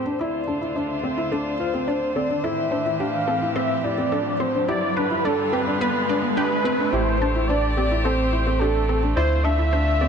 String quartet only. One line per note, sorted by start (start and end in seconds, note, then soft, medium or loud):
0.00 0.17 A2 medium
0.00 0.17 E3 medium
0.00 0.17 G4 medium
0.00 4.64 C5 medium
0.19 2.42 D2 medium
0.19 2.42 D3 medium
0.19 2.42 F4 medium
2.44 4.66 A2 medium
2.44 4.66 E3 medium
2.44 4.66 G4 medium
4.68 6.91 G2 medium
4.68 6.90 D3 medium
4.68 6.90 F4 medium
4.68 6.90 B4 medium
6.92 10.08 A3 medium
6.92 10.08 C4 medium
6.92 9.15 G4 medium
9.17 10.08 D3 medium
9.17 10.08 F4 medium